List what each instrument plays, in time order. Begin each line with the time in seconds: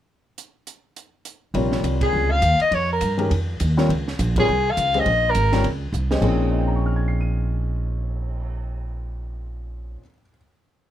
0.38 closed hi-hat
0.67 closed hi-hat
0.96 closed hi-hat
1.25 closed hi-hat
1.54 upright bass A#1, grand piano C3 G3 F4 A#4 C#5, ride
1.72 snare
1.83 upright bass C2, hi-hat pedal, ride
2.01 soprano saxophone G#4, kick, ride
2.13 upright bass C#2
2.31 soprano saxophone F5
2.42 upright bass D#2, hi-hat pedal, ride
2.60 soprano saxophone D#5, muted upright bass stroke, ride
2.71 upright bass F2, soprano saxophone C#5, ride
2.93 soprano saxophone A#4
3.01 upright bass G2, hi-hat pedal, ride
3.17 grand piano D#3 G#3 C#4 G4 A#4, ride
3.31 upright bass F2, ride
3.60 upright bass D#2, hi-hat pedal, ride
3.77 grand piano G3 C4 F4 A#4 C#5, snare
3.89 upright bass C#2, ride
4.08 snare
4.19 upright bass A#1, hi-hat pedal, ride
4.36 grand piano G3 C4 F4 A#4 C#5, soprano saxophone G#4, kick, ride
4.48 upright bass C2
4.71 soprano saxophone F5
4.77 upright bass C#2, hi-hat pedal, ride
4.94 grand piano G#3 C#4 G4 C5 D#5, ride
5.00 soprano saxophone D#5
5.06 upright bass A#1, ride
5.30 soprano saxophone A#4
5.35 upright bass G#1, hi-hat pedal, ride
5.53 grand piano G3 C4 F4 A#4 C#5, snare, ride
5.64 upright bass C#2, ride
5.92 upright bass C2, hi-hat pedal
6.11 grand piano G#3 C#4 G4 C5 D#5, snare
6.21 upright bass A#1, grand piano A#2 F3 C4 C#4 D#4 G#4, kick, crash
6.40 cymbal swell
6.51 grand piano D#5
6.59 grand piano G5
6.67 grand piano A#5
6.76 grand piano C#6
6.86 grand piano F6
6.96 grand piano G#6
7.08 grand piano C7
7.21 grand piano D#7